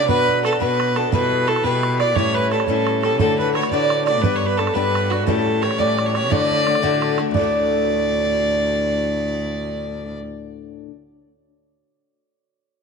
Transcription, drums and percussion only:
0, 0, Header, 1, 2, 480
1, 0, Start_track
1, 0, Key_signature, 2, "major"
1, 0, Tempo, 344828
1, 131, Time_signature, 6, 3, 24, 8
1, 17858, End_track
2, 0, Start_track
2, 0, Title_t, "Bodhran"
2, 123, Note_on_c, 9, 64, 84
2, 262, Note_off_c, 9, 64, 0
2, 394, Note_on_c, 9, 64, 31
2, 533, Note_off_c, 9, 64, 0
2, 622, Note_on_c, 9, 64, 57
2, 733, Note_off_c, 9, 64, 0
2, 733, Note_on_c, 9, 64, 60
2, 856, Note_off_c, 9, 64, 0
2, 856, Note_on_c, 9, 64, 76
2, 995, Note_off_c, 9, 64, 0
2, 1110, Note_on_c, 9, 64, 73
2, 1249, Note_off_c, 9, 64, 0
2, 1338, Note_on_c, 9, 64, 61
2, 1477, Note_off_c, 9, 64, 0
2, 1568, Note_on_c, 9, 64, 90
2, 1707, Note_off_c, 9, 64, 0
2, 1828, Note_on_c, 9, 64, 26
2, 1967, Note_off_c, 9, 64, 0
2, 2059, Note_on_c, 9, 64, 63
2, 2174, Note_off_c, 9, 64, 0
2, 2174, Note_on_c, 9, 64, 60
2, 2287, Note_off_c, 9, 64, 0
2, 2287, Note_on_c, 9, 64, 73
2, 2426, Note_off_c, 9, 64, 0
2, 2551, Note_on_c, 9, 64, 65
2, 2690, Note_off_c, 9, 64, 0
2, 2782, Note_on_c, 9, 64, 56
2, 2922, Note_off_c, 9, 64, 0
2, 3010, Note_on_c, 9, 64, 91
2, 3150, Note_off_c, 9, 64, 0
2, 3276, Note_on_c, 9, 64, 27
2, 3416, Note_off_c, 9, 64, 0
2, 3501, Note_on_c, 9, 64, 55
2, 3618, Note_off_c, 9, 64, 0
2, 3618, Note_on_c, 9, 64, 60
2, 3724, Note_off_c, 9, 64, 0
2, 3724, Note_on_c, 9, 64, 78
2, 3863, Note_off_c, 9, 64, 0
2, 3989, Note_on_c, 9, 64, 64
2, 4128, Note_off_c, 9, 64, 0
2, 4223, Note_on_c, 9, 64, 66
2, 4362, Note_off_c, 9, 64, 0
2, 4446, Note_on_c, 9, 64, 101
2, 4586, Note_off_c, 9, 64, 0
2, 4712, Note_on_c, 9, 64, 30
2, 4851, Note_off_c, 9, 64, 0
2, 4944, Note_on_c, 9, 64, 67
2, 5057, Note_off_c, 9, 64, 0
2, 5057, Note_on_c, 9, 64, 66
2, 5169, Note_off_c, 9, 64, 0
2, 5169, Note_on_c, 9, 64, 67
2, 5309, Note_off_c, 9, 64, 0
2, 5431, Note_on_c, 9, 64, 79
2, 5570, Note_off_c, 9, 64, 0
2, 5665, Note_on_c, 9, 64, 66
2, 5805, Note_off_c, 9, 64, 0
2, 5895, Note_on_c, 9, 64, 102
2, 6034, Note_off_c, 9, 64, 0
2, 6160, Note_on_c, 9, 64, 32
2, 6299, Note_off_c, 9, 64, 0
2, 6388, Note_on_c, 9, 64, 68
2, 6503, Note_off_c, 9, 64, 0
2, 6503, Note_on_c, 9, 64, 62
2, 6620, Note_off_c, 9, 64, 0
2, 6620, Note_on_c, 9, 64, 76
2, 6759, Note_off_c, 9, 64, 0
2, 6894, Note_on_c, 9, 64, 70
2, 7033, Note_off_c, 9, 64, 0
2, 7121, Note_on_c, 9, 64, 63
2, 7260, Note_off_c, 9, 64, 0
2, 7345, Note_on_c, 9, 64, 83
2, 7484, Note_off_c, 9, 64, 0
2, 7607, Note_on_c, 9, 64, 24
2, 7747, Note_off_c, 9, 64, 0
2, 7834, Note_on_c, 9, 64, 58
2, 7943, Note_off_c, 9, 64, 0
2, 7943, Note_on_c, 9, 64, 53
2, 8069, Note_off_c, 9, 64, 0
2, 8069, Note_on_c, 9, 64, 72
2, 8208, Note_off_c, 9, 64, 0
2, 8331, Note_on_c, 9, 64, 70
2, 8470, Note_off_c, 9, 64, 0
2, 8560, Note_on_c, 9, 64, 59
2, 8699, Note_off_c, 9, 64, 0
2, 8794, Note_on_c, 9, 64, 94
2, 8933, Note_off_c, 9, 64, 0
2, 9053, Note_on_c, 9, 64, 27
2, 9192, Note_off_c, 9, 64, 0
2, 9281, Note_on_c, 9, 64, 65
2, 9400, Note_off_c, 9, 64, 0
2, 9400, Note_on_c, 9, 64, 57
2, 9517, Note_off_c, 9, 64, 0
2, 9517, Note_on_c, 9, 64, 75
2, 9656, Note_off_c, 9, 64, 0
2, 9773, Note_on_c, 9, 64, 65
2, 9912, Note_off_c, 9, 64, 0
2, 9994, Note_on_c, 9, 64, 60
2, 10133, Note_off_c, 9, 64, 0
2, 10224, Note_on_c, 9, 64, 95
2, 10363, Note_off_c, 9, 64, 0
2, 17858, End_track
0, 0, End_of_file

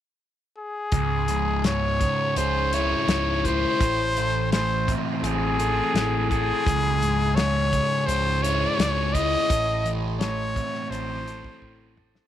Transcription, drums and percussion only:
0, 0, Header, 1, 2, 480
1, 0, Start_track
1, 0, Key_signature, 4, "minor"
1, 0, Tempo, 718563
1, 615, Time_signature, 4, 2, 24, 8
1, 3972, Tempo, 708383
1, 8259, End_track
2, 0, Start_track
2, 0, Title_t, "Drums"
2, 613, Note_on_c, 9, 42, 72
2, 616, Note_on_c, 9, 36, 95
2, 680, Note_off_c, 9, 42, 0
2, 683, Note_off_c, 9, 36, 0
2, 855, Note_on_c, 9, 42, 55
2, 922, Note_off_c, 9, 42, 0
2, 1097, Note_on_c, 9, 42, 67
2, 1100, Note_on_c, 9, 38, 82
2, 1164, Note_off_c, 9, 42, 0
2, 1167, Note_off_c, 9, 38, 0
2, 1340, Note_on_c, 9, 36, 74
2, 1341, Note_on_c, 9, 42, 60
2, 1407, Note_off_c, 9, 36, 0
2, 1407, Note_off_c, 9, 42, 0
2, 1579, Note_on_c, 9, 42, 70
2, 1646, Note_off_c, 9, 42, 0
2, 1821, Note_on_c, 9, 42, 59
2, 1888, Note_off_c, 9, 42, 0
2, 2060, Note_on_c, 9, 42, 70
2, 2063, Note_on_c, 9, 38, 101
2, 2127, Note_off_c, 9, 42, 0
2, 2130, Note_off_c, 9, 38, 0
2, 2303, Note_on_c, 9, 36, 69
2, 2305, Note_on_c, 9, 42, 53
2, 2370, Note_off_c, 9, 36, 0
2, 2372, Note_off_c, 9, 42, 0
2, 2542, Note_on_c, 9, 36, 100
2, 2544, Note_on_c, 9, 42, 82
2, 2609, Note_off_c, 9, 36, 0
2, 2611, Note_off_c, 9, 42, 0
2, 2783, Note_on_c, 9, 42, 58
2, 2850, Note_off_c, 9, 42, 0
2, 3022, Note_on_c, 9, 42, 66
2, 3025, Note_on_c, 9, 38, 88
2, 3089, Note_off_c, 9, 42, 0
2, 3092, Note_off_c, 9, 38, 0
2, 3260, Note_on_c, 9, 36, 76
2, 3263, Note_on_c, 9, 42, 54
2, 3327, Note_off_c, 9, 36, 0
2, 3330, Note_off_c, 9, 42, 0
2, 3499, Note_on_c, 9, 42, 65
2, 3566, Note_off_c, 9, 42, 0
2, 3738, Note_on_c, 9, 42, 55
2, 3805, Note_off_c, 9, 42, 0
2, 3978, Note_on_c, 9, 42, 67
2, 3981, Note_on_c, 9, 38, 85
2, 4046, Note_off_c, 9, 42, 0
2, 4049, Note_off_c, 9, 38, 0
2, 4217, Note_on_c, 9, 36, 76
2, 4221, Note_on_c, 9, 42, 46
2, 4285, Note_off_c, 9, 36, 0
2, 4289, Note_off_c, 9, 42, 0
2, 4459, Note_on_c, 9, 36, 113
2, 4464, Note_on_c, 9, 42, 77
2, 4527, Note_off_c, 9, 36, 0
2, 4532, Note_off_c, 9, 42, 0
2, 4703, Note_on_c, 9, 42, 57
2, 4771, Note_off_c, 9, 42, 0
2, 4939, Note_on_c, 9, 42, 64
2, 4942, Note_on_c, 9, 38, 96
2, 5007, Note_off_c, 9, 42, 0
2, 5009, Note_off_c, 9, 38, 0
2, 5180, Note_on_c, 9, 36, 78
2, 5180, Note_on_c, 9, 42, 62
2, 5248, Note_off_c, 9, 36, 0
2, 5248, Note_off_c, 9, 42, 0
2, 5422, Note_on_c, 9, 42, 70
2, 5489, Note_off_c, 9, 42, 0
2, 5664, Note_on_c, 9, 42, 65
2, 5732, Note_off_c, 9, 42, 0
2, 5903, Note_on_c, 9, 42, 75
2, 5906, Note_on_c, 9, 38, 100
2, 5971, Note_off_c, 9, 42, 0
2, 5974, Note_off_c, 9, 38, 0
2, 6140, Note_on_c, 9, 36, 65
2, 6143, Note_on_c, 9, 42, 61
2, 6208, Note_off_c, 9, 36, 0
2, 6210, Note_off_c, 9, 42, 0
2, 6380, Note_on_c, 9, 36, 102
2, 6382, Note_on_c, 9, 42, 86
2, 6448, Note_off_c, 9, 36, 0
2, 6450, Note_off_c, 9, 42, 0
2, 6622, Note_on_c, 9, 42, 54
2, 6689, Note_off_c, 9, 42, 0
2, 6860, Note_on_c, 9, 42, 65
2, 6862, Note_on_c, 9, 38, 98
2, 6928, Note_off_c, 9, 42, 0
2, 6930, Note_off_c, 9, 38, 0
2, 7099, Note_on_c, 9, 36, 82
2, 7104, Note_on_c, 9, 42, 55
2, 7167, Note_off_c, 9, 36, 0
2, 7172, Note_off_c, 9, 42, 0
2, 7226, Note_on_c, 9, 38, 30
2, 7294, Note_off_c, 9, 38, 0
2, 7344, Note_on_c, 9, 42, 63
2, 7412, Note_off_c, 9, 42, 0
2, 7583, Note_on_c, 9, 42, 58
2, 7651, Note_off_c, 9, 42, 0
2, 7697, Note_on_c, 9, 36, 68
2, 7765, Note_off_c, 9, 36, 0
2, 7816, Note_on_c, 9, 36, 49
2, 7884, Note_off_c, 9, 36, 0
2, 8057, Note_on_c, 9, 45, 72
2, 8124, Note_off_c, 9, 45, 0
2, 8178, Note_on_c, 9, 38, 87
2, 8246, Note_off_c, 9, 38, 0
2, 8259, End_track
0, 0, End_of_file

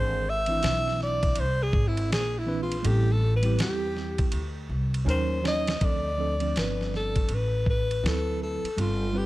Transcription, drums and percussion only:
0, 0, Header, 1, 2, 480
1, 0, Start_track
1, 0, Tempo, 740741
1, 1848, Time_signature, 4, 2, 24, 8
1, 6000, End_track
2, 0, Start_track
2, 0, Title_t, "Drums"
2, 300, Note_on_c, 9, 51, 60
2, 365, Note_off_c, 9, 51, 0
2, 406, Note_on_c, 9, 44, 47
2, 406, Note_on_c, 9, 51, 69
2, 415, Note_on_c, 9, 38, 117
2, 471, Note_off_c, 9, 44, 0
2, 471, Note_off_c, 9, 51, 0
2, 480, Note_off_c, 9, 38, 0
2, 568, Note_on_c, 9, 38, 38
2, 633, Note_off_c, 9, 38, 0
2, 653, Note_on_c, 9, 38, 35
2, 717, Note_off_c, 9, 38, 0
2, 795, Note_on_c, 9, 51, 72
2, 797, Note_on_c, 9, 36, 87
2, 860, Note_off_c, 9, 51, 0
2, 862, Note_off_c, 9, 36, 0
2, 878, Note_on_c, 9, 51, 87
2, 943, Note_off_c, 9, 51, 0
2, 1123, Note_on_c, 9, 36, 101
2, 1187, Note_off_c, 9, 36, 0
2, 1279, Note_on_c, 9, 51, 69
2, 1343, Note_off_c, 9, 51, 0
2, 1377, Note_on_c, 9, 44, 49
2, 1377, Note_on_c, 9, 51, 69
2, 1378, Note_on_c, 9, 38, 113
2, 1441, Note_off_c, 9, 44, 0
2, 1441, Note_off_c, 9, 51, 0
2, 1443, Note_off_c, 9, 38, 0
2, 1760, Note_on_c, 9, 51, 60
2, 1825, Note_off_c, 9, 51, 0
2, 1844, Note_on_c, 9, 51, 85
2, 1909, Note_off_c, 9, 51, 0
2, 2221, Note_on_c, 9, 51, 61
2, 2286, Note_off_c, 9, 51, 0
2, 2324, Note_on_c, 9, 44, 51
2, 2324, Note_on_c, 9, 51, 68
2, 2333, Note_on_c, 9, 38, 124
2, 2389, Note_off_c, 9, 44, 0
2, 2389, Note_off_c, 9, 51, 0
2, 2398, Note_off_c, 9, 38, 0
2, 2569, Note_on_c, 9, 38, 36
2, 2634, Note_off_c, 9, 38, 0
2, 2711, Note_on_c, 9, 51, 72
2, 2716, Note_on_c, 9, 36, 83
2, 2776, Note_off_c, 9, 51, 0
2, 2780, Note_off_c, 9, 36, 0
2, 2798, Note_on_c, 9, 51, 80
2, 2863, Note_off_c, 9, 51, 0
2, 3203, Note_on_c, 9, 51, 67
2, 3267, Note_off_c, 9, 51, 0
2, 3296, Note_on_c, 9, 44, 47
2, 3296, Note_on_c, 9, 51, 67
2, 3361, Note_off_c, 9, 44, 0
2, 3361, Note_off_c, 9, 51, 0
2, 3533, Note_on_c, 9, 38, 99
2, 3598, Note_off_c, 9, 38, 0
2, 3677, Note_on_c, 9, 51, 61
2, 3683, Note_on_c, 9, 38, 100
2, 3742, Note_off_c, 9, 51, 0
2, 3748, Note_off_c, 9, 38, 0
2, 3765, Note_on_c, 9, 51, 77
2, 3768, Note_on_c, 9, 36, 120
2, 3830, Note_off_c, 9, 51, 0
2, 3832, Note_off_c, 9, 36, 0
2, 4149, Note_on_c, 9, 51, 51
2, 4214, Note_off_c, 9, 51, 0
2, 4250, Note_on_c, 9, 44, 45
2, 4250, Note_on_c, 9, 51, 60
2, 4259, Note_on_c, 9, 38, 113
2, 4315, Note_off_c, 9, 44, 0
2, 4315, Note_off_c, 9, 51, 0
2, 4324, Note_off_c, 9, 38, 0
2, 4412, Note_on_c, 9, 38, 38
2, 4477, Note_off_c, 9, 38, 0
2, 4498, Note_on_c, 9, 38, 36
2, 4563, Note_off_c, 9, 38, 0
2, 4637, Note_on_c, 9, 51, 69
2, 4640, Note_on_c, 9, 36, 83
2, 4702, Note_off_c, 9, 51, 0
2, 4705, Note_off_c, 9, 36, 0
2, 4722, Note_on_c, 9, 51, 78
2, 4786, Note_off_c, 9, 51, 0
2, 4966, Note_on_c, 9, 36, 93
2, 5031, Note_off_c, 9, 36, 0
2, 5125, Note_on_c, 9, 51, 64
2, 5190, Note_off_c, 9, 51, 0
2, 5222, Note_on_c, 9, 44, 45
2, 5222, Note_on_c, 9, 51, 60
2, 5223, Note_on_c, 9, 38, 102
2, 5286, Note_off_c, 9, 44, 0
2, 5286, Note_off_c, 9, 51, 0
2, 5288, Note_off_c, 9, 38, 0
2, 5606, Note_on_c, 9, 51, 57
2, 5670, Note_off_c, 9, 51, 0
2, 5691, Note_on_c, 9, 51, 77
2, 5756, Note_off_c, 9, 51, 0
2, 6000, End_track
0, 0, End_of_file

